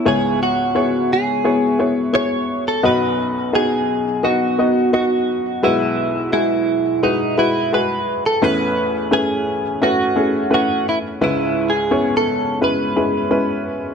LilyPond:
<<
  \new Staff \with { instrumentName = "Clean electric guitar" } { \time 4/4 \key cis \minor \tempo 4 = 86 gis'8 fis'4 gis'4 r8 cis''8. a'16 | b'4 gis'4 fis'4 fis'4 | e'4 e'4 dis'8 e'8 b'8. a'16 | b'4 gis'4 fis'4 fis'8 e'8 |
\tuplet 3/2 { e'4 gis'8~ gis'8 a'4 } b'4. r8 | }
  \new Staff \with { instrumentName = "Upright piano" } { \time 4/4 \key cis \minor <b e' gis' cis''>4 <b e' gis' cis''>4 <b e' gis' cis''>8 <b e' gis' cis''>8 <b e' gis' cis''>4 | <b dis' fis' dis''>4 <b dis' fis' gis'>4 <b dis' fis' dis''>8 <b dis' fis' dis''>8 <b dis' fis' dis''>4 | <gis e' fis' b'>4 <gis e' fis' gis'>4 <gis e' fis' b'>8 <gis e' fis' b'>8 <gis e' fis' gis'>4 | <a cis' e' b'>4 <a cis' e' b'>4 <a cis' e' b'>8 <a cis' e' gis'>8 <a cis' e' b'>4 |
<gis cis' e' b'>4 <b cis' e' cis''>4 <gis cis' e' b'>8 <gis cis' e' b'>8 <gis cis' e' b'>4 | }
  \new Staff \with { instrumentName = "Upright piano" } { \clef bass \time 4/4 \key cis \minor <cis, gis,>1 | <b,, fis,>1 | <b,, b,>1 | <a,, e,>1 |
<cis, gis,>1 | }
>>